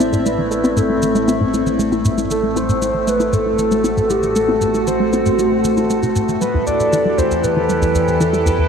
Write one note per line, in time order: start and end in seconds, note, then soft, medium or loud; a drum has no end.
0.00 6.38 A1 medium
0.00 6.41 A2 medium
0.00 6.41 A3 medium
0.00 0.10 C4 medium
0.00 2.62 C4 medium
0.00 3.42 E4 medium
0.00 0.25 C5 medium
0.00 7.30 E5 medium
0.00 low bongo medium
0.00 shaker medium
0.13 0.17 A2 loud
0.13 shaker soft
0.26 0.30 A3 medium
0.26 0.79 B4 loud
0.26 low bongo soft
0.26 shaker medium
0.38 0.42 E3 medium
0.51 0.61 A3 medium
0.51 shaker medium
0.64 0.74 C4 loud
0.64 low bongo medium
0.64 shaker soft
0.77 0.81 A2 loud
0.77 1.80 A4 medium
0.77 shaker medium
0.89 0.94 A3 medium
0.89 low bongo soft
1.02 1.06 E3 medium
1.02 shaker medium
1.15 1.25 A3 loud
1.15 shaker medium
1.28 1.38 C4 loud
1.28 low bongo medium
1.28 shaker medium
1.40 1.45 A2 medium
1.53 1.58 A3 medium
1.53 low bongo soft
1.53 shaker medium
1.66 1.70 E3 medium
1.66 shaker soft
1.79 1.89 A3 loud
1.79 shaker medium
1.92 2.02 C4 medium
1.92 low bongo medium
1.92 shaker soft
2.05 2.09 A2 loud
2.05 shaker medium
2.17 2.22 A3 medium
2.17 low bongo soft
2.17 shaker medium
2.30 2.35 E3 medium
2.30 2.59 A4 loud
2.30 shaker medium
2.43 2.53 A3 medium
2.43 8.68 A4 medium
2.56 2.66 C4 medium
2.56 3.10 C5 loud
2.56 low bongo medium
2.56 shaker medium
2.69 2.73 A2 medium
2.69 shaker soft
2.82 2.86 A3 medium
2.82 low bongo soft
2.82 shaker medium
2.94 2.99 E3 medium
3.07 3.18 A3 loud
3.07 3.26 B4 loud
3.07 shaker medium
3.20 3.30 C4 loud
3.20 low bongo medium
3.20 shaker medium
3.26 6.41 F#4 medium
3.26 3.35 B4 medium
3.33 3.37 A2 loud
3.33 4.12 A4 loud
3.33 shaker medium
3.46 3.50 A3 medium
3.46 low bongo soft
3.58 3.63 E3 medium
3.58 shaker medium
3.71 3.82 A3 medium
3.71 shaker soft
3.84 3.94 C4 loud
3.84 low bongo medium
3.84 shaker medium
3.97 4.01 A2 medium
3.97 shaker soft
4.10 4.14 A3 medium
4.10 4.35 G4 medium
4.10 low bongo soft
4.10 shaker medium
4.23 4.27 E3 medium
4.23 shaker medium
4.36 4.46 A3 medium
4.36 4.89 A4 loud
4.36 shaker medium
4.48 4.59 C4 medium
4.48 low bongo medium
4.61 4.65 A2 medium
4.61 shaker medium
4.74 4.78 A3 medium
4.74 low bongo soft
4.74 shaker soft
4.87 4.91 E3 medium
4.87 6.15 C5 loud
4.87 shaker medium
5.00 5.10 A3 medium
5.13 5.23 C4 medium
5.13 low bongo medium
5.13 shaker medium
5.26 5.30 A2 loud
5.26 shaker medium
5.38 5.42 A3 medium
5.38 low bongo soft
5.38 shaker medium
5.51 5.55 E3 medium
5.64 5.71 E3 medium
5.64 shaker medium
5.77 5.84 A3 medium
5.77 low bongo medium
5.77 shaker soft
5.90 5.97 A3 medium
5.90 shaker medium
6.03 6.13 C3 medium
6.03 low bongo soft
6.03 shaker soft
6.16 6.22 A2 medium
6.16 shaker medium
6.28 6.35 E3 medium
6.28 shaker soft
6.41 8.68 E2 medium
6.41 8.68 E3 medium
6.41 6.51 G3 medium
6.41 6.65 B4 medium
6.41 shaker medium
6.52 6.58 E2 medium
6.52 8.68 E4 medium
6.52 low bongo soft
6.61 8.68 G4 medium
6.67 6.74 E2 medium
6.67 7.19 D5 loud
6.67 shaker medium
6.80 6.84 B2 medium
6.80 shaker soft
6.93 7.03 E3 loud
6.93 low bongo medium
6.93 shaker medium
7.05 7.15 G3 medium
7.18 7.22 E2 medium
7.18 7.45 C5 medium
7.18 low bongo soft
7.18 shaker medium
7.31 7.38 E2 medium
7.31 shaker soft
7.44 7.48 B2 medium
7.44 8.22 B4 loud
7.44 shaker medium
7.56 7.67 E3 loud
7.56 low bongo medium
7.69 7.79 G3 medium
7.69 shaker medium
7.82 7.86 E2 medium
7.82 low bongo soft
7.82 shaker soft
7.95 8.02 E2 medium
7.95 shaker medium
8.07 8.12 B2 medium
8.07 8.68 B5 medium
8.07 shaker soft
8.20 8.30 E3 loud
8.20 8.45 A4 medium
8.20 low bongo medium
8.20 shaker medium
8.33 8.43 G3 medium
8.33 shaker soft
8.46 8.50 E2 medium
8.46 8.68 B4 loud
8.46 low bongo soft
8.46 shaker medium
8.58 8.65 E2 medium